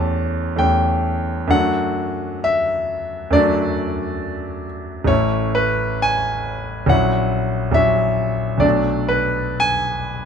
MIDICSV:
0, 0, Header, 1, 2, 480
1, 0, Start_track
1, 0, Key_signature, 2, "major"
1, 0, Tempo, 930233
1, 795, Time_signature, 4, 2, 24, 8
1, 1277, Tempo, 873362
1, 2717, Tempo, 953895
1, 2718, Key_signature, 3, "major"
1, 3197, Tempo, 862069
1, 4637, Tempo, 996678
1, 5117, Tempo, 928793
1, 5438, End_track
2, 0, Start_track
2, 0, Title_t, "Grand piano"
2, 0, Program_c, 0, 0
2, 0, Control_c, 0, 64, 127
2, 0, Note_on_c, 0, 40, 46
2, 0, Note_on_c, 0, 57, 37
2, 0, Note_on_c, 0, 61, 38
2, 0, Note_on_c, 0, 67, 44
2, 0, Note_on_c, 0, 81, 69
2, 282, Note_off_c, 0, 40, 0
2, 286, Note_off_c, 0, 57, 0
2, 289, Note_on_c, 0, 40, 39
2, 294, Note_off_c, 0, 61, 0
2, 294, Note_on_c, 0, 57, 37
2, 297, Note_off_c, 0, 67, 0
2, 302, Note_on_c, 0, 79, 75
2, 304, Note_on_c, 0, 61, 36
2, 307, Note_on_c, 0, 67, 35
2, 310, Note_off_c, 0, 81, 0
2, 760, Note_off_c, 0, 57, 0
2, 761, Note_on_c, 0, 42, 47
2, 766, Note_off_c, 0, 40, 0
2, 768, Note_on_c, 0, 57, 35
2, 773, Note_on_c, 0, 62, 39
2, 774, Note_off_c, 0, 61, 0
2, 775, Note_off_c, 0, 67, 0
2, 777, Note_on_c, 0, 78, 82
2, 779, Note_on_c, 0, 66, 38
2, 787, Note_off_c, 0, 79, 0
2, 804, Control_c, 0, 64, 0
2, 877, Control_c, 0, 64, 127
2, 1259, Note_on_c, 0, 76, 76
2, 1269, Note_off_c, 0, 78, 0
2, 1724, Note_off_c, 0, 42, 0
2, 1728, Note_off_c, 0, 57, 0
2, 1731, Note_off_c, 0, 62, 0
2, 1733, Note_on_c, 0, 42, 49
2, 1734, Note_off_c, 0, 66, 0
2, 1740, Note_on_c, 0, 57, 45
2, 1746, Note_on_c, 0, 62, 44
2, 1746, Note_on_c, 0, 74, 79
2, 1754, Note_on_c, 0, 66, 43
2, 1755, Note_off_c, 0, 76, 0
2, 2469, Note_off_c, 0, 74, 0
2, 2680, Note_off_c, 0, 42, 0
2, 2684, Note_off_c, 0, 57, 0
2, 2687, Note_off_c, 0, 62, 0
2, 2690, Note_off_c, 0, 66, 0
2, 2690, Note_on_c, 0, 33, 48
2, 2699, Note_on_c, 0, 57, 39
2, 2701, Note_on_c, 0, 61, 39
2, 2706, Note_on_c, 0, 73, 80
2, 2708, Note_on_c, 0, 64, 42
2, 2725, Control_c, 0, 64, 0
2, 2799, Control_c, 0, 64, 127
2, 2945, Note_on_c, 0, 71, 77
2, 2949, Note_off_c, 0, 73, 0
2, 3184, Note_on_c, 0, 80, 82
2, 3193, Note_off_c, 0, 71, 0
2, 3641, Note_off_c, 0, 33, 0
2, 3646, Note_off_c, 0, 57, 0
2, 3647, Note_off_c, 0, 61, 0
2, 3651, Note_off_c, 0, 64, 0
2, 3651, Note_on_c, 0, 34, 57
2, 3655, Note_on_c, 0, 54, 41
2, 3661, Note_on_c, 0, 61, 44
2, 3666, Note_on_c, 0, 64, 46
2, 3668, Note_on_c, 0, 78, 74
2, 3670, Note_off_c, 0, 80, 0
2, 3686, Control_c, 0, 64, 0
2, 3774, Control_c, 0, 64, 127
2, 4117, Note_off_c, 0, 34, 0
2, 4122, Note_off_c, 0, 54, 0
2, 4125, Note_on_c, 0, 34, 48
2, 4127, Note_off_c, 0, 61, 0
2, 4129, Note_off_c, 0, 64, 0
2, 4130, Note_on_c, 0, 54, 40
2, 4139, Note_on_c, 0, 61, 35
2, 4141, Note_on_c, 0, 76, 79
2, 4144, Note_off_c, 0, 78, 0
2, 4145, Note_on_c, 0, 64, 36
2, 4601, Note_off_c, 0, 54, 0
2, 4605, Note_on_c, 0, 35, 45
2, 4610, Note_off_c, 0, 34, 0
2, 4610, Note_on_c, 0, 54, 42
2, 4617, Note_off_c, 0, 61, 0
2, 4617, Note_on_c, 0, 74, 66
2, 4618, Note_on_c, 0, 57, 37
2, 4620, Note_off_c, 0, 64, 0
2, 4621, Note_on_c, 0, 62, 44
2, 4633, Note_off_c, 0, 76, 0
2, 4646, Control_c, 0, 64, 0
2, 4715, Control_c, 0, 64, 127
2, 4854, Note_on_c, 0, 71, 67
2, 4864, Note_off_c, 0, 74, 0
2, 5101, Note_on_c, 0, 80, 90
2, 5107, Note_off_c, 0, 71, 0
2, 5438, Note_off_c, 0, 35, 0
2, 5438, Note_off_c, 0, 54, 0
2, 5438, Note_off_c, 0, 57, 0
2, 5438, Note_off_c, 0, 62, 0
2, 5438, Note_off_c, 0, 80, 0
2, 5438, End_track
0, 0, End_of_file